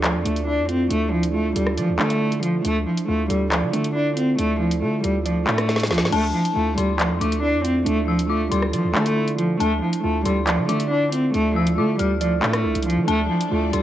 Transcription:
Already playing: 808-style bass D2, synth keys D4 E4 F4 A4
0.04 cello F3, synth keys D5, clap, closed hi-hat
0.15 808-style bass F2
0.25 808-style bass D2, cello A3, synth keys D4, closed hi-hat
0.36 closed hi-hat
0.47 cello D4, synth keys E4
0.58 808-style bass F2
0.69 cello C4, synth keys F4, closed hi-hat
0.90 808-style bass D2, cello A3, synth keys D4, closed hi-hat
1.13 cello F3, synth keys E4
1.23 closed hi-hat
1.34 cello A3, synth keys F4
1.56 808-style bass D2, cello G3, synth keys A4, closed hi-hat
1.67 cross-stick
1.78 808-style bass F3, cello F3, synth keys D5, closed hi-hat
1.89 808-style bass D2
1.99 808-style bass D3, cello A3, synth keys D4, clap
2.10 closed hi-hat
2.21 synth keys E4
2.32 closed hi-hat
2.43 cello F3, synth keys F4, closed hi-hat
2.65 808-style bass D2, cello A3, synth keys D4, closed hi-hat
2.86 cello F3, synth keys E4
2.97 closed hi-hat
3.08 808-style bass D2, cello A3, synth keys F4
3.30 808-style bass D2, cello G3, synth keys A4, closed hi-hat
3.52 cello F3, synth keys D5, clap, closed hi-hat
3.62 808-style bass D3
3.73 808-style bass D3, cello A3, synth keys D4, closed hi-hat
3.84 closed hi-hat
3.95 cello D4, synth keys E4
4.17 cello C4, synth keys F4, closed hi-hat
4.38 808-style bass D2, cello A3, synth keys D4, closed hi-hat
4.60 cello F3, synth keys E4
4.71 closed hi-hat
4.82 808-style bass D3, cello A3, synth keys F4
5.03 808-style bass D2, cello G3, synth keys A4, closed hi-hat
5.25 cello F3, synth keys D5, closed hi-hat
5.47 808-style bass A2, cello A3, synth keys D4, clap
5.58 cross-stick, closed hi-hat
5.68 synth keys E4, snare
5.76 snare, closed hi-hat
5.83 snare, closed hi-hat
5.91 808-style bass C2, cello F3, synth keys F4, snare, closed hi-hat
5.98 808-style bass A2, snare
6.05 snare
6.12 808-style bass D2, cello A3, synth keys D4, synth bell A5, closed hi-hat, crash
6.34 cello F3, synth keys E4
6.45 closed hi-hat
6.55 808-style bass D2, cello A3, synth keys F4
6.78 808-style bass D2, cello G3, synth keys A4, synth bell C6, closed hi-hat
6.99 cello F3, synth keys D5, clap, closed hi-hat
7.10 808-style bass F2
7.21 808-style bass D2, cello A3, synth keys D4, synth bell D6, closed hi-hat
7.32 closed hi-hat
7.43 cello D4, synth keys E4
7.54 808-style bass F2
7.64 cello C4, synth keys F4, closed hi-hat
7.86 808-style bass D2, cello A3, synth keys D4, closed hi-hat
8.08 cello F3, synth keys E4, synth bell E6
8.19 closed hi-hat
8.30 cello A3, synth keys F4, synth bell D6
8.51 808-style bass D2, cello G3, synth keys A4, synth bell C6, closed hi-hat
8.62 cross-stick
8.73 808-style bass F3, cello F3, synth keys D5, closed hi-hat
8.84 808-style bass D2
8.95 808-style bass D3, cello A3, synth keys D4, clap
9.06 closed hi-hat
9.17 synth keys E4
9.28 closed hi-hat
9.38 cello F3, synth keys F4, closed hi-hat
9.60 808-style bass D2, cello A3, synth keys D4, synth bell A5, closed hi-hat
9.82 cello F3, synth keys E4
9.93 closed hi-hat
10.03 808-style bass D2, cello A3, synth keys F4
10.25 808-style bass D2, cello G3, synth keys A4, synth bell C6, closed hi-hat
10.47 cello F3, synth keys D5, clap, closed hi-hat
10.58 808-style bass D3
10.69 808-style bass D3, cello A3, synth keys D4, synth bell D6, closed hi-hat
10.80 closed hi-hat
10.91 cello D4, synth keys E4
11.12 cello C4, synth keys F4, closed hi-hat
11.34 808-style bass D2, cello A3, synth keys D4, closed hi-hat
11.56 cello F3, synth keys E4, synth bell E6
11.67 closed hi-hat
11.78 808-style bass D3, cello A3, synth keys F4, synth bell D6
11.99 808-style bass D2, cello G3, synth keys A4, synth bell F6, closed hi-hat
12.21 cello F3, synth keys D5, closed hi-hat
12.43 808-style bass A2, cello A3, synth keys D4, clap
12.54 cross-stick, closed hi-hat
12.64 808-style bass C2, synth keys E4
12.75 808-style bass C2, closed hi-hat
12.83 cello F3, synth keys F4, closed hi-hat
12.90 closed hi-hat
12.97 808-style bass F3
13.07 808-style bass D2, string section F3 D4 A4 D5, cello A3, synth keys D4, synth bell A5, closed hi-hat
13.30 cello F3, synth keys E4
13.41 closed hi-hat
13.51 808-style bass D2, cello A3, synth keys F4
13.73 808-style bass D2, cello G3, synth keys A4, synth bell C6, closed hi-hat

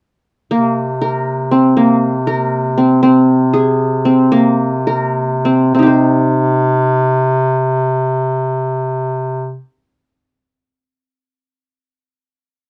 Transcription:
0.51 bass clarinet C3, qanun A#3
1.01 qanun A#4
1.52 qanun C4
1.77 bass clarinet C3, qanun A#3
2.27 qanun A#4
2.78 qanun C4
3.03 bass clarinet C3, qanun C4
3.53 qanun G#4
4.05 qanun C4
4.32 bass clarinet C3, qanun A#3
4.87 qanun A#4
5.45 qanun C4
5.74 bass clarinet C3, qanun C4
5.79 qanun D#4 G4
5.87 qanun C5

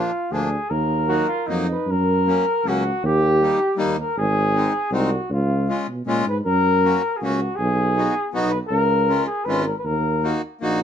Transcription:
Already playing: accordion F3 A#3 D4, flugelhorn F4
0.31 tuba D2, accordion F3 A#3 D4, flugelhorn G#4
0.70 tuba D#2, flugelhorn A#4
1.08 accordion F#3 A#3 D#4, trumpet F#4
1.28 trumpet F4
1.47 tuba F2, accordion F#3 A#3 D#4, trumpet D#4
1.72 flugelhorn B4
1.87 tuba F#2, flugelhorn A#4
2.26 accordion F#3 A#3 C#4
2.64 tuba C#2, accordion F#3 A#3 C#4, flugelhorn F#4
3.03 tuba D#2, flugelhorn G4
3.41 accordion G3 A#3 D#4
3.77 tuba D#2, accordion G3 A#3 D#4
4.00 flugelhorn A#4
4.17 tuba G#1, flugelhorn G#4
4.55 accordion G#3 C4 D#4
4.91 tuba C2, accordion G#3 C4 D#4, flugelhorn F#4
5.30 tuba C#2, flugelhorn F4
5.68 accordion G#3 C#4 F4
5.88 tuba B2
6.06 tuba A#2, accordion G#3 C#4 F4
6.26 tuba G#2, flugelhorn B4
6.45 tuba F#2, flugelhorn A#4
6.84 accordion A#3 C#4 F#4
7.17 flugelhorn F#4 G#4
7.22 tuba C#2, accordion A#3 C#4 F#4
7.56 flugelhorn G#4
7.60 tuba B1
7.97 accordion B3 D#4 F#4
8.33 tuba B1, accordion B3 D#4 F#4
8.49 flugelhorn B4
8.68 tuba C#2, flugelhorn A#4
9.08 accordion G#3 C#4 F4
9.26 flugelhorn G#4
9.45 tuba G#1, accordion G#3 C#4 F4, flugelhorn B4
9.65 flugelhorn A#4
9.78 flugelhorn B4
9.84 tuba D#2, flugelhorn A#4
10.24 accordion A#3 D#4 F#4
10.61 tuba A#1, accordion A#3 D#4 F#4

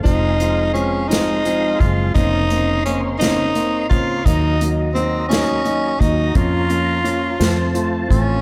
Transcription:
0.03 fingered electric bass F1, upright piano F3 G#3 C4, tenor saxophone D#4, tonewheel organ G#4 F5 C6, kick, closed hi-hat
0.40 upright piano F3 G#3 C4, closed hi-hat
0.74 upright piano F3 G#3 C4, tenor saxophone C#4, closed hi-hat
1.08 upright piano F3 G#3 C4, tenor saxophone D#4, closed hi-hat
1.13 snare
1.45 upright piano F3 G#3 C4, closed hi-hat
1.80 fingered electric bass F#1, upright piano F3 G#3 C4, tenor saxophone F4, kick, closed hi-hat
2.14 fingered electric bass F1, upright piano C#3 A#3 C4, tenor saxophone D#4, tonewheel organ A#4 C#5, kick, closed hi-hat
2.50 upright piano C#3 A#3 C4, closed hi-hat
2.85 upright piano C#3 A#3 C4, tenor saxophone C#4, closed hi-hat
3.19 upright piano C#3 A#3 C4, tenor saxophone D#4, snare, closed hi-hat
3.55 upright piano A#3 C4, closed hi-hat
3.90 fingered electric bass C#2, upright piano C#3 A#3 C4, tenor saxophone F4, kick, closed hi-hat
4.25 fingered electric bass D#2, upright piano F#3 A#3 D#4, tenor saxophone D#4, tonewheel organ F#4 D#5 A#5, kick, closed hi-hat
4.60 upright piano F#3 A#3 D#4, closed hi-hat
4.94 upright piano F#3 A#3 D#4, tenor saxophone C4, closed hi-hat
5.29 upright piano F#3 A#3 D#4, tenor saxophone C#4, snare, closed hi-hat
5.65 upright piano F#3 A#3 D#4, closed hi-hat
6.00 fingered electric bass D#2, upright piano F#3 A#3 D#4, tenor saxophone D#4, kick, closed hi-hat
6.35 fingered electric bass F2, upright piano F3 A#3 C#4, tonewheel organ F4 C#5, tenor saxophone F4, kick, closed hi-hat
6.70 upright piano F3 A#3 C#4, closed hi-hat
7.04 upright piano F3 A#3 C#4, closed hi-hat
7.39 fingered electric bass F2, upright piano F3 A3 C4, tonewheel organ C5 A5, snare, closed hi-hat
7.74 upright piano F3 A3 C4, closed hi-hat
8.08 fingered electric bass A1, upright piano F3 A3 C4, tenor saxophone C#4, kick, closed hi-hat

